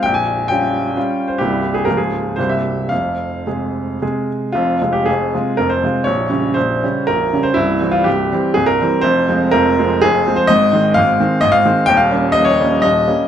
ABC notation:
X:1
M:3/4
L:1/16
Q:1/4=124
K:Fm
V:1 name="Grand piano"
g a3 g6- g c | G3 A B A3 c =e3 | f8- f2 z2 | F3 G A4 B c3 |
d4 c4 B3 c | =E3 F G4 A B3 | c4 B4 A3 c | [K:Ab] e4 f4 e f3 |
g f3 e d3 e4 |]
V:2 name="Grand piano" clef=bass
[B,,,,B,,,]4 [G,DF]4 [G,DF]4 | [C,,,C,,G,B,=E]4 [D,,,D,,F,B,F]4 [C,,,C,,C,B,G]4 | [F,,,F,,]4 [C,A,A]4 [C,A,A]4 | [F,,,F,,]2 [C,A,F]2 [F,,,F,,]2 [C,A,F]2 [F,,,F,,]2 [C,A,F]2 |
[B,,,,B,,,]2 [D,G,D]2 [B,,,,B,,,]2 [D,G,D]2 [B,,,,B,,,]2 [D,G,D]2 | [C,,,C,,]2 [=E,G,C]2 [C,,,C,,]2 [E,G,C]2 [C,,,C,,]2 [E,G,C]2 | [F,,,F,,]2 [F,A,C]2 [F,,,F,,]2 [F,A,C]2 [F,,,F,,]2 [F,A,C]2 | [K:Ab] [A,,,A,,]2 [E,A,C]2 [A,,,A,,]2 [E,A,C]2 [A,,,A,,]2 [E,A,C]2 |
[E,,,E,,]2 [G,B,D]2 [E,,,E,,]2 [G,B,D]2 [E,,,E,,]2 [G,B,D]2 |]